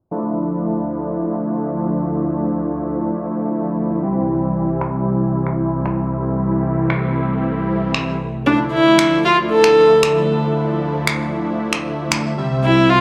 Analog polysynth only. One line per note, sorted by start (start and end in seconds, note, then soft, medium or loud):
0.11 3.99 F3 medium
0.11 3.99 A3 medium
0.11 3.99 D4 medium
0.11 3.99 E4 medium
4.02 8.16 E3 medium
4.02 8.16 G3 medium
4.02 8.17 C4 medium
4.02 8.17 E4 medium
8.46 12.34 F3 medium
8.46 12.34 A3 medium
8.46 12.34 D4 medium
8.46 12.34 E4 medium
12.37 13.01 C3 medium
12.37 13.01 G3 medium
12.37 13.01 C4 medium
12.37 13.01 E5 medium